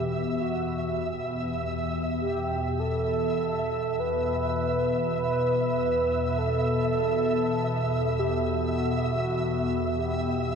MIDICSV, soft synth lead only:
0, 0, Header, 1, 2, 480
1, 0, Start_track
1, 0, Key_signature, 1, "minor"
1, 0, Tempo, 500000
1, 10128, End_track
2, 0, Start_track
2, 0, Title_t, "Soft synth lead"
2, 0, Program_c, 0, 80
2, 0, Note_on_c, 0, 67, 88
2, 397, Note_on_c, 0, 66, 79
2, 412, Note_off_c, 0, 67, 0
2, 1248, Note_off_c, 0, 66, 0
2, 2115, Note_on_c, 0, 67, 85
2, 2682, Note_on_c, 0, 69, 97
2, 2696, Note_off_c, 0, 67, 0
2, 3836, Note_on_c, 0, 71, 104
2, 3850, Note_off_c, 0, 69, 0
2, 4968, Note_off_c, 0, 71, 0
2, 4974, Note_on_c, 0, 71, 109
2, 6127, Note_on_c, 0, 69, 105
2, 6141, Note_off_c, 0, 71, 0
2, 7864, Note_on_c, 0, 67, 82
2, 7878, Note_off_c, 0, 69, 0
2, 8430, Note_on_c, 0, 66, 92
2, 8444, Note_off_c, 0, 67, 0
2, 9590, Note_on_c, 0, 67, 79
2, 9604, Note_off_c, 0, 66, 0
2, 10128, Note_off_c, 0, 67, 0
2, 10128, End_track
0, 0, End_of_file